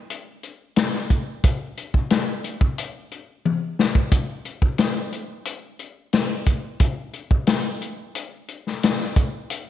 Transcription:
0.10 closed hi-hat medium
0.43 closed hi-hat soft
0.76 snare loud
0.76 closed hi-hat medium
0.94 snare soft
1.10 kick medium
1.10 closed hi-hat soft
1.44 kick loud
1.44 closed hi-hat medium
1.77 closed hi-hat medium
1.94 kick medium
2.10 snare medium
2.10 closed hi-hat medium
2.44 closed hi-hat medium
2.61 kick medium
2.78 closed hi-hat medium
3.11 closed hi-hat medium
3.45 high tom medium
3.79 snare medium
3.95 kick medium
4.12 kick loud
4.12 closed hi-hat medium
4.45 closed hi-hat medium
4.62 kick medium
4.78 snare medium
4.78 closed hi-hat medium
5.12 closed hi-hat medium
5.45 closed hi-hat medium
5.79 closed hi-hat soft
6.13 snare loud
6.13 closed hi-hat medium
6.46 kick medium
6.46 closed hi-hat medium
6.80 kick medium
6.80 closed hi-hat medium
7.13 closed hi-hat medium
7.31 kick medium
7.47 snare loud
7.47 closed hi-hat medium
7.81 closed hi-hat medium
8.15 closed hi-hat medium
8.48 closed hi-hat medium
8.67 snare soft
8.83 snare loud
8.83 closed hi-hat medium
9.01 snare soft
9.16 kick medium
9.16 closed hi-hat medium
9.50 closed hi-hat medium

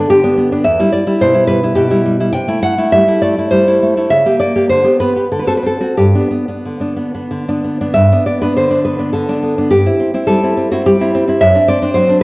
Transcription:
0.00 0.23 B3 soft
0.00 0.23 D4 soft
0.10 0.65 D3 soft
0.10 0.62 G4 medium
0.24 0.36 B3 soft
0.24 0.51 D4 soft
0.38 0.51 B3 soft
0.52 0.64 B3 soft
0.52 0.64 D4 soft
0.64 0.79 E2 medium
0.64 0.91 E5 medium
0.79 0.92 G3 soft
0.79 1.06 E4 soft
0.92 1.05 G3 soft
0.92 1.20 D5 medium
1.06 1.33 G3 soft
1.06 1.33 E4 soft
1.21 1.75 B2 soft
1.21 1.47 C5 medium
1.34 1.47 G3 soft
1.34 1.63 E4 soft
1.47 1.62 G3 soft
1.47 1.75 B4 medium
1.63 1.89 G3 soft
1.63 1.89 E4 soft
1.75 2.33 B2 soft
1.75 2.30 G4 medium
1.91 2.04 G3 soft
1.91 2.19 E4 soft
2.05 2.19 G3 soft
2.20 2.32 G3 soft
2.20 2.32 E4 soft
2.33 2.47 C3 soft
2.33 2.60 G5 medium
2.48 2.61 A3 soft
2.48 2.77 E4 soft
2.63 2.77 A3 soft
2.63 2.90 F#5 medium
2.78 3.07 A3 soft
2.78 3.07 E4 soft
2.92 3.50 G3 soft
2.92 3.20 E5 medium
3.08 3.21 A3 soft
3.08 3.37 E4 soft
3.22 3.36 A3 soft
3.22 3.49 D5 medium
3.38 3.66 A3 soft
3.38 3.66 E4 soft
3.51 4.10 G3 soft
3.51 4.07 C5 medium
3.67 3.81 A3 soft
3.67 3.96 E4 soft
3.82 3.96 A3 soft
3.97 4.09 A3 soft
3.97 4.09 E4 soft
4.10 4.24 C#3 soft
4.10 4.38 E5 medium
4.26 4.39 A#3 soft
4.26 4.54 G4 soft
4.40 4.55 A#3 soft
4.40 4.68 D5 medium
4.56 4.68 A#3 soft
4.56 4.68 G4 soft
4.69 4.84 D3 soft
4.69 4.98 C5 medium
4.84 5.00 B3 soft
4.84 5.15 G4 soft
5.00 5.15 B3 soft
5.00 5.29 B4 medium
5.16 5.29 B3 soft
5.16 5.30 G4 soft
5.32 5.46 D3 soft
5.32 5.39 A4 medium
5.39 5.47 B4 soft
5.47 5.62 C4 soft
5.47 5.80 F#4 soft
5.47 5.56 A4 medium
5.57 5.66 B4 soft
5.63 5.79 C4 soft
5.63 5.95 A4 soft
5.80 5.95 C4 soft
5.80 5.95 F#4 soft
5.97 6.13 G2 soft
5.97 7.59 G4 soft
6.15 6.29 B3 soft
6.15 6.48 D4 soft
6.31 6.47 B3 soft
6.48 6.79 B3 soft
6.48 6.80 D4 soft
6.66 7.30 D3 soft
6.80 6.95 B3 soft
6.80 7.13 D4 soft
6.96 7.13 B3 soft
7.14 7.47 B3 soft
7.14 7.47 D4 soft
7.31 7.95 D3 soft
7.48 7.63 B3 soft
7.48 7.80 D4 soft
7.64 7.79 B3 soft
7.81 7.94 B3 soft
7.81 7.94 D4 soft
7.94 8.09 G2 soft
7.94 8.23 E5 medium
8.12 8.26 B3 soft
8.12 8.42 D4 soft
8.26 8.41 B3 soft
8.26 8.40 D5 medium
8.42 8.68 B3 soft
8.42 8.69 D4 soft
8.42 8.55 B4 medium
8.57 9.12 D3 soft
8.57 8.84 C5 medium
8.70 8.84 B3 soft
8.70 8.98 D4 soft
8.85 8.97 B3 soft
8.85 9.12 B4 medium
8.99 9.27 B3 soft
8.99 9.28 D4 soft
9.13 9.71 D3 soft
9.13 9.68 A4 medium
9.28 9.41 B3 soft
9.28 9.57 D4 soft
9.43 9.57 B3 soft
9.58 9.70 B3 soft
9.58 9.70 D4 soft
9.71 9.85 G2 soft
9.71 10.25 G4 medium
9.86 9.98 C4 soft
9.86 10.13 E4 soft
9.99 10.13 C4 soft
10.14 10.42 C4 soft
10.14 10.42 E4 soft
10.27 10.85 G3 soft
10.27 10.69 A4 medium
10.43 10.56 C4 soft
10.43 10.71 E4 soft
10.57 10.71 C4 soft
10.71 11.00 C4 soft
10.71 11.00 E4 soft
10.71 10.85 F#4 medium
10.86 11.41 G3 soft
10.86 11.39 G4 medium
11.01 11.14 C4 soft
11.01 11.28 E4 soft
11.15 11.26 C4 soft
11.28 11.40 C4 soft
11.28 11.40 E4 soft
11.41 11.55 F#2 soft
11.41 11.67 E5 medium
11.55 11.67 C4 soft
11.55 11.82 D4 soft
11.68 11.81 C4 soft
11.68 11.94 D5 medium
11.82 12.08 C4 soft
11.82 12.08 D4 soft
11.94 12.23 F#3 soft
11.94 12.21 C5 medium
12.09 12.21 C4 soft
12.09 12.23 D4 soft

